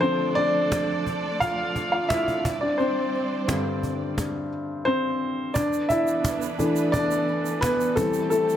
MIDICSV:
0, 0, Header, 1, 5, 480
1, 0, Start_track
1, 0, Tempo, 691244
1, 19, Time_signature, 4, 2, 24, 8
1, 5949, End_track
2, 0, Start_track
2, 0, Title_t, "Upright piano"
2, 0, Program_c, 0, 0
2, 0, Control_c, 0, 64, 127
2, 0, Note_on_c, 0, 50, 49
2, 0, Note_on_c, 0, 53, 49
2, 0, Note_on_c, 0, 57, 58
2, 4, Note_on_c, 0, 72, 91
2, 20, Note_on_c, 0, 60, 66
2, 234, Note_off_c, 0, 72, 0
2, 243, Note_off_c, 0, 60, 0
2, 245, Note_on_c, 0, 74, 114
2, 260, Note_on_c, 0, 62, 74
2, 468, Note_off_c, 0, 50, 0
2, 470, Note_off_c, 0, 53, 0
2, 472, Note_off_c, 0, 57, 0
2, 705, Note_off_c, 0, 74, 0
2, 712, Note_off_c, 0, 62, 0
2, 975, Note_on_c, 0, 77, 100
2, 981, Note_on_c, 0, 65, 74
2, 1315, Note_off_c, 0, 65, 0
2, 1323, Note_off_c, 0, 77, 0
2, 1333, Note_on_c, 0, 77, 84
2, 1341, Note_on_c, 0, 65, 70
2, 1448, Note_off_c, 0, 77, 0
2, 1449, Note_on_c, 0, 76, 93
2, 1452, Note_off_c, 0, 65, 0
2, 1460, Note_on_c, 0, 64, 73
2, 1709, Control_c, 0, 64, 0
2, 1789, Note_off_c, 0, 76, 0
2, 1795, Note_off_c, 0, 64, 0
2, 1811, Note_on_c, 0, 74, 83
2, 1823, Note_on_c, 0, 62, 67
2, 1829, Control_c, 0, 64, 127
2, 1929, Note_on_c, 0, 72, 77
2, 1933, Note_off_c, 0, 62, 0
2, 1939, Note_off_c, 0, 74, 0
2, 1942, Note_on_c, 0, 60, 61
2, 2412, Note_off_c, 0, 60, 0
2, 2414, Note_on_c, 0, 43, 56
2, 2419, Note_on_c, 0, 50, 53
2, 2422, Note_on_c, 0, 60, 57
2, 3109, Note_off_c, 0, 43, 0
2, 3111, Note_off_c, 0, 50, 0
2, 3113, Note_off_c, 0, 60, 0
2, 3346, Note_off_c, 0, 72, 0
2, 3369, Note_on_c, 0, 72, 93
2, 3385, Note_on_c, 0, 60, 70
2, 3834, Note_off_c, 0, 60, 0
2, 3847, Note_on_c, 0, 74, 93
2, 3864, Note_on_c, 0, 62, 78
2, 3867, Control_c, 0, 64, 0
2, 3868, Note_off_c, 0, 72, 0
2, 4004, Control_c, 0, 64, 127
2, 4084, Note_off_c, 0, 62, 0
2, 4088, Note_on_c, 0, 76, 88
2, 4100, Note_off_c, 0, 74, 0
2, 4103, Note_on_c, 0, 64, 76
2, 4573, Note_on_c, 0, 52, 56
2, 4575, Note_on_c, 0, 57, 53
2, 4580, Note_on_c, 0, 62, 65
2, 4792, Note_off_c, 0, 64, 0
2, 4807, Note_on_c, 0, 74, 100
2, 4811, Note_off_c, 0, 62, 0
2, 4822, Note_on_c, 0, 62, 71
2, 4834, Note_off_c, 0, 76, 0
2, 5267, Note_off_c, 0, 52, 0
2, 5268, Note_off_c, 0, 57, 0
2, 5271, Note_off_c, 0, 62, 0
2, 5284, Note_on_c, 0, 71, 99
2, 5299, Note_on_c, 0, 59, 69
2, 5306, Note_off_c, 0, 74, 0
2, 5521, Note_off_c, 0, 59, 0
2, 5525, Note_on_c, 0, 69, 81
2, 5531, Note_on_c, 0, 52, 54
2, 5535, Note_on_c, 0, 55, 46
2, 5538, Note_off_c, 0, 71, 0
2, 5539, Note_on_c, 0, 60, 58
2, 5541, Note_on_c, 0, 57, 64
2, 5546, Control_c, 0, 64, 0
2, 5675, Control_c, 0, 64, 127
2, 5754, Note_off_c, 0, 69, 0
2, 5762, Note_off_c, 0, 57, 0
2, 5764, Note_on_c, 0, 69, 87
2, 5778, Note_on_c, 0, 57, 69
2, 5949, Note_off_c, 0, 52, 0
2, 5949, Note_off_c, 0, 55, 0
2, 5949, Note_off_c, 0, 57, 0
2, 5949, Note_off_c, 0, 60, 0
2, 5949, Note_off_c, 0, 69, 0
2, 5949, End_track
3, 0, Start_track
3, 0, Title_t, "String section"
3, 0, Program_c, 1, 48
3, 0, Note_on_c, 1, 53, 64
3, 0, Note_on_c, 1, 57, 70
3, 0, Note_on_c, 1, 62, 65
3, 0, Note_on_c, 1, 69, 65
3, 0, Note_on_c, 1, 74, 74
3, 1674, Note_off_c, 1, 57, 0
3, 1680, Note_off_c, 1, 69, 0
3, 1681, Note_off_c, 1, 53, 0
3, 1694, Note_on_c, 1, 55, 74
3, 1695, Note_on_c, 1, 60, 64
3, 1696, Note_on_c, 1, 72, 70
3, 2871, Note_off_c, 1, 62, 0
3, 2871, Note_off_c, 1, 74, 0
3, 2885, Note_off_c, 1, 55, 0
3, 2885, Note_off_c, 1, 60, 0
3, 2886, Note_off_c, 1, 72, 0
3, 3863, Note_on_c, 1, 62, 68
3, 3864, Note_on_c, 1, 71, 66
3, 3865, Note_on_c, 1, 52, 63
3, 3866, Note_on_c, 1, 59, 62
3, 3867, Note_on_c, 1, 69, 55
3, 5522, Note_off_c, 1, 62, 0
3, 5523, Note_off_c, 1, 71, 0
3, 5524, Note_off_c, 1, 59, 0
3, 5532, Note_on_c, 1, 67, 62
3, 5534, Note_on_c, 1, 60, 70
3, 5535, Note_on_c, 1, 57, 62
3, 5949, Note_off_c, 1, 52, 0
3, 5949, Note_off_c, 1, 57, 0
3, 5949, Note_off_c, 1, 60, 0
3, 5949, Note_off_c, 1, 67, 0
3, 5949, Note_off_c, 1, 69, 0
3, 5949, End_track
4, 0, Start_track
4, 0, Title_t, "Cajon"
4, 18, Note_on_c, 9, 38, 55
4, 88, Note_off_c, 9, 38, 0
4, 262, Note_on_c, 9, 38, 31
4, 331, Note_off_c, 9, 38, 0
4, 498, Note_on_c, 9, 36, 92
4, 499, Note_on_c, 9, 38, 105
4, 567, Note_off_c, 9, 36, 0
4, 568, Note_off_c, 9, 38, 0
4, 740, Note_on_c, 9, 38, 34
4, 741, Note_on_c, 9, 36, 47
4, 810, Note_off_c, 9, 36, 0
4, 810, Note_off_c, 9, 38, 0
4, 981, Note_on_c, 9, 36, 94
4, 1050, Note_off_c, 9, 36, 0
4, 1220, Note_on_c, 9, 36, 65
4, 1221, Note_on_c, 9, 38, 43
4, 1290, Note_off_c, 9, 36, 0
4, 1291, Note_off_c, 9, 38, 0
4, 1459, Note_on_c, 9, 38, 113
4, 1461, Note_on_c, 9, 36, 107
4, 1529, Note_off_c, 9, 38, 0
4, 1530, Note_off_c, 9, 36, 0
4, 1582, Note_on_c, 9, 36, 56
4, 1652, Note_off_c, 9, 36, 0
4, 1701, Note_on_c, 9, 36, 108
4, 1770, Note_off_c, 9, 36, 0
4, 1943, Note_on_c, 9, 38, 47
4, 2012, Note_off_c, 9, 38, 0
4, 2185, Note_on_c, 9, 38, 34
4, 2254, Note_off_c, 9, 38, 0
4, 2420, Note_on_c, 9, 36, 95
4, 2422, Note_on_c, 9, 38, 109
4, 2489, Note_off_c, 9, 36, 0
4, 2492, Note_off_c, 9, 38, 0
4, 2661, Note_on_c, 9, 38, 31
4, 2662, Note_on_c, 9, 36, 54
4, 2731, Note_off_c, 9, 36, 0
4, 2731, Note_off_c, 9, 38, 0
4, 2901, Note_on_c, 9, 36, 101
4, 2901, Note_on_c, 9, 38, 84
4, 2970, Note_off_c, 9, 36, 0
4, 2970, Note_off_c, 9, 38, 0
4, 3860, Note_on_c, 9, 36, 107
4, 3929, Note_off_c, 9, 36, 0
4, 4097, Note_on_c, 9, 36, 62
4, 4166, Note_off_c, 9, 36, 0
4, 4336, Note_on_c, 9, 36, 104
4, 4338, Note_on_c, 9, 38, 104
4, 4406, Note_off_c, 9, 36, 0
4, 4407, Note_off_c, 9, 38, 0
4, 4578, Note_on_c, 9, 36, 55
4, 4578, Note_on_c, 9, 38, 34
4, 4647, Note_off_c, 9, 38, 0
4, 4648, Note_off_c, 9, 36, 0
4, 4817, Note_on_c, 9, 36, 102
4, 4887, Note_off_c, 9, 36, 0
4, 5056, Note_on_c, 9, 38, 46
4, 5126, Note_off_c, 9, 38, 0
4, 5295, Note_on_c, 9, 38, 116
4, 5296, Note_on_c, 9, 36, 112
4, 5364, Note_off_c, 9, 38, 0
4, 5365, Note_off_c, 9, 36, 0
4, 5535, Note_on_c, 9, 36, 120
4, 5604, Note_off_c, 9, 36, 0
4, 5774, Note_on_c, 9, 38, 52
4, 5843, Note_off_c, 9, 38, 0
4, 5949, End_track
5, 0, Start_track
5, 0, Title_t, "Drums"
5, 3855, Note_on_c, 9, 82, 69
5, 3924, Note_off_c, 9, 82, 0
5, 3979, Note_on_c, 9, 82, 47
5, 4048, Note_off_c, 9, 82, 0
5, 4098, Note_on_c, 9, 82, 50
5, 4168, Note_off_c, 9, 82, 0
5, 4218, Note_on_c, 9, 82, 49
5, 4287, Note_off_c, 9, 82, 0
5, 4340, Note_on_c, 9, 82, 64
5, 4410, Note_off_c, 9, 82, 0
5, 4456, Note_on_c, 9, 82, 49
5, 4525, Note_off_c, 9, 82, 0
5, 4580, Note_on_c, 9, 82, 51
5, 4649, Note_off_c, 9, 82, 0
5, 4695, Note_on_c, 9, 82, 52
5, 4764, Note_off_c, 9, 82, 0
5, 4818, Note_on_c, 9, 82, 53
5, 4887, Note_off_c, 9, 82, 0
5, 4937, Note_on_c, 9, 82, 50
5, 5006, Note_off_c, 9, 82, 0
5, 5176, Note_on_c, 9, 82, 49
5, 5246, Note_off_c, 9, 82, 0
5, 5303, Note_on_c, 9, 82, 65
5, 5372, Note_off_c, 9, 82, 0
5, 5419, Note_on_c, 9, 82, 53
5, 5488, Note_off_c, 9, 82, 0
5, 5536, Note_on_c, 9, 82, 52
5, 5606, Note_off_c, 9, 82, 0
5, 5647, Note_on_c, 9, 82, 50
5, 5717, Note_off_c, 9, 82, 0
5, 5772, Note_on_c, 9, 82, 58
5, 5841, Note_off_c, 9, 82, 0
5, 5896, Note_on_c, 9, 82, 48
5, 5949, Note_off_c, 9, 82, 0
5, 5949, End_track
0, 0, End_of_file